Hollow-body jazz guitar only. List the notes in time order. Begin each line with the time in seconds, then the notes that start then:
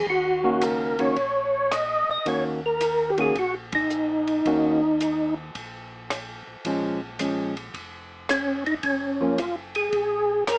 0.44 D#3 A#3 C#4 F#4
0.99 D#3 A#3 C#4 F#4
2.26 D#3 A#3 C#4 F#4
3.18 D#3 A#3 C#4 F#4
4.46 D#3 A#3 C#4 F#4
6.66 F3 G#3 C#4
7.19 F3 G#3 C#4
9.21 F3 A#3 C#4